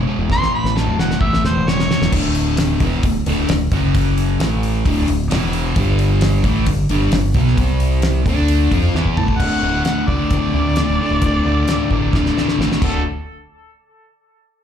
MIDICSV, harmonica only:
0, 0, Header, 1, 2, 480
1, 0, Start_track
1, 0, Key_signature, 2, "major"
1, 0, Tempo, 455235
1, 316, Time_signature, 4, 2, 24, 8
1, 15433, End_track
2, 0, Start_track
2, 0, Title_t, "Harmonica"
2, 0, Program_c, 0, 22
2, 338, Note_on_c, 0, 84, 127
2, 561, Note_off_c, 0, 84, 0
2, 576, Note_on_c, 0, 83, 87
2, 819, Note_on_c, 0, 81, 87
2, 835, Note_off_c, 0, 83, 0
2, 1042, Note_off_c, 0, 81, 0
2, 1048, Note_on_c, 0, 78, 84
2, 1269, Note_off_c, 0, 78, 0
2, 1275, Note_on_c, 0, 76, 94
2, 1510, Note_off_c, 0, 76, 0
2, 1531, Note_on_c, 0, 72, 91
2, 1771, Note_on_c, 0, 73, 105
2, 1787, Note_off_c, 0, 72, 0
2, 2231, Note_off_c, 0, 73, 0
2, 9668, Note_on_c, 0, 81, 94
2, 9891, Note_on_c, 0, 78, 113
2, 9907, Note_off_c, 0, 81, 0
2, 10376, Note_off_c, 0, 78, 0
2, 10382, Note_on_c, 0, 78, 85
2, 10611, Note_off_c, 0, 78, 0
2, 10624, Note_on_c, 0, 74, 83
2, 13230, Note_off_c, 0, 74, 0
2, 13524, Note_on_c, 0, 69, 85
2, 13744, Note_off_c, 0, 69, 0
2, 15433, End_track
0, 0, End_of_file